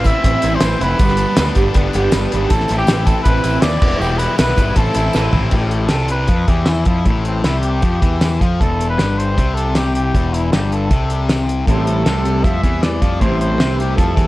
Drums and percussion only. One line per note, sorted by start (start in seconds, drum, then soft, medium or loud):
0.04 kick medium
0.04 closed hi-hat medium
0.04 tambourine medium
0.24 kick medium
0.24 closed hi-hat medium
0.42 closed hi-hat medium
0.42 tambourine medium
0.60 snare loud
0.60 closed hi-hat loud
0.60 tambourine loud
0.81 closed hi-hat medium
0.99 kick loud
0.99 closed hi-hat medium
0.99 tambourine medium
1.08 snare soft
1.17 closed hi-hat medium
1.17 tambourine medium
1.37 snare loud
1.37 closed hi-hat loud
1.37 tambourine loud
1.47 snare soft
1.55 kick medium
1.55 closed hi-hat medium
1.55 tambourine medium
1.74 kick medium
1.74 closed hi-hat loud
1.93 closed hi-hat medium
1.93 tambourine medium
2.12 snare loud
2.12 closed hi-hat loud
2.12 tambourine loud
2.32 closed hi-hat medium
2.50 kick loud
2.50 closed hi-hat loud
2.50 tambourine medium
2.60 snare soft
2.68 closed hi-hat medium
2.68 tambourine medium
2.87 snare loud
2.87 closed hi-hat medium
2.87 tambourine loud
3.06 kick medium
3.06 closed hi-hat medium
3.06 tambourine medium
3.25 kick medium
3.25 closed hi-hat loud
3.44 closed hi-hat medium
3.44 tambourine medium
3.62 snare loud
3.62 closed hi-hat medium
3.62 tambourine loud
3.82 kick loud
3.82 crash medium
4.02 tambourine medium
4.19 closed hi-hat medium
4.19 tambourine medium
4.38 snare loud
4.38 closed hi-hat medium
4.38 tambourine loud
4.48 snare soft
4.57 kick medium
4.57 closed hi-hat medium
4.57 tambourine medium
4.76 kick medium
4.76 closed hi-hat medium
4.76 tambourine soft
4.94 closed hi-hat medium
4.94 tambourine medium
5.13 snare medium
5.13 tambourine loud
5.33 floor tom medium
5.33 tambourine soft
5.51 kick medium
5.51 crash medium
5.71 closed hi-hat medium
5.89 snare medium
5.89 closed hi-hat medium
5.89 tambourine medium
6.08 closed hi-hat medium
6.28 kick medium
6.28 closed hi-hat medium
6.48 kick medium
6.48 closed hi-hat medium
6.66 snare medium
6.66 closed hi-hat medium
6.66 tambourine medium
6.85 kick medium
6.85 closed hi-hat soft
7.05 kick medium
7.05 closed hi-hat medium
7.25 closed hi-hat medium
7.44 snare medium
7.44 closed hi-hat medium
7.44 tambourine medium
7.63 closed hi-hat soft
7.82 kick medium
7.82 closed hi-hat medium
8.02 kick loud
8.02 closed hi-hat medium
8.21 snare medium
8.21 closed hi-hat medium
8.21 tambourine loud
8.41 kick medium
8.41 closed hi-hat medium
8.61 kick medium
8.61 closed hi-hat medium
8.81 closed hi-hat medium
8.99 snare medium
8.99 closed hi-hat medium
8.99 tambourine medium
9.20 closed hi-hat medium
9.38 kick medium
9.38 closed hi-hat medium
9.57 closed hi-hat medium
9.75 snare medium
9.75 closed hi-hat medium
9.75 tambourine medium
9.95 closed hi-hat soft
10.15 kick medium
10.15 closed hi-hat medium
10.34 closed hi-hat medium
10.53 snare medium
10.53 closed hi-hat medium
10.53 tambourine medium
10.72 closed hi-hat soft
10.91 kick medium
10.91 closed hi-hat medium
11.10 closed hi-hat medium
11.29 snare medium
11.29 closed hi-hat medium
11.29 tambourine loud
11.49 closed hi-hat medium
11.67 kick medium
11.67 closed hi-hat medium
11.87 closed hi-hat medium
12.06 snare medium
12.06 closed hi-hat medium
12.06 tambourine medium
12.25 closed hi-hat medium
12.44 kick medium
12.44 closed hi-hat medium
12.64 kick medium
12.64 closed hi-hat medium
12.83 snare loud
12.83 closed hi-hat medium
12.83 tambourine loud
13.02 kick medium
13.02 closed hi-hat medium
13.21 kick medium
13.21 closed hi-hat medium
13.41 closed hi-hat medium
13.60 snare medium
13.60 closed hi-hat medium
13.60 tambourine medium
13.80 closed hi-hat soft
13.98 kick medium
13.98 closed hi-hat medium
14.17 kick medium
14.17 closed hi-hat medium